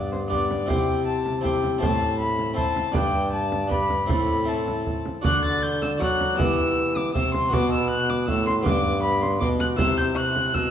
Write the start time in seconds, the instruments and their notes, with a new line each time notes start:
Already playing: harpsichord G2 B3 D4 G4, trombone G2, violin D5
0.12 violin C5, frame drum
0.28 harpsichord B3 D4 G4, violin D5, frame drum
0.51 frame drum
0.66 trombone C3, harpsichord C3 C4 E4 G4, violin G5, frame drum
1.06 violin A5
1.26 frame drum
1.41 harpsichord C4 E4 G4, violin G5, frame drum
1.64 frame drum
1.78 harpsichord C4 E4 C5, violin A5
1.82 harpsichord A2, trombone A2, frame drum
2.20 violin B5
2.39 frame drum
2.53 harpsichord C4 E4 C5, violin A5
2.58 frame drum
2.76 frame drum
2.92 harpsichord G2 D4 G4 B4, trombone G2, frame drum
2.96 violin G5
3.33 violin A5
3.52 frame drum
3.67 harpsichord D4 G4 B4, frame drum
3.72 violin B5
3.90 frame drum
4.06 trombone A2, harpsichord A2 C4 E4 A4, violin B5, frame drum
4.44 harpsichord C4 E4 A4, violin A5
4.68 frame drum
4.87 frame drum
5.06 frame drum
5.21 harpsichord D3 D4 F#4 A4, trombone D3, violin F#6, frame drum
5.45 violin A6
5.63 violin G6
5.82 violin E6, frame drum
5.98 harpsichord F#3 D4 F#4 A4, trombone F#3, violin F#6, frame drum
6.20 frame drum
6.35 harpsichord E3 B3 G4
6.39 trombone E3, violin E6, frame drum
6.96 violin D6, frame drum
7.14 harpsichord C3, trombone C3, violin E6, frame drum
7.34 violin C6, frame drum
7.48 harpsichord B3 F#4 B4
7.53 harpsichord B2, trombone B2, violin D6, frame drum
7.72 violin E6
7.90 violin F#6
8.09 violin D6, frame drum
8.28 harpsichord A2, trombone A2, violin E6, frame drum
8.47 violin C6, frame drum
8.62 harpsichord G2 B3 G4 B4, violin D6
8.66 trombone G2, frame drum
9.03 violin B5
9.22 violin C6, frame drum
9.40 trombone B2, harpsichord B2, violin D6, frame drum
9.60 violin F#6, frame drum
9.76 trombone C3, harpsichord C3 E4 C5, violin E6, frame drum
9.98 violin G6
10.16 violin F#6
10.36 frame drum
10.54 harpsichord B2, trombone B2, violin E6, frame drum